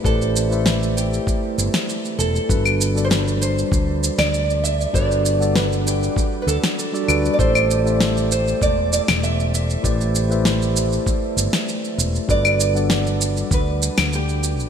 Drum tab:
SH |xxxxxxxxx-xxxxxx|xxxxxxxxx-xxxxxx|xxxxxxxxx-xxxxxx|xxxxxxxxx-xxxxxx|
CL |----------------|-x---------x----|--------------x-|-x---------x----|
SD |----o------o----|----o------o----|----o------o----|----o------o----|
BD |o-------o-------|o-------o-------|o-------o-------|o-------o-------|

SH |xxxxxxxxx-xxxxxx|xxxxxxxxx-xxxxxx|
CL |----------------|-x---------x----|
SD |----o------o----|----o------o----|
BD |o-------o-------|o-------o-------|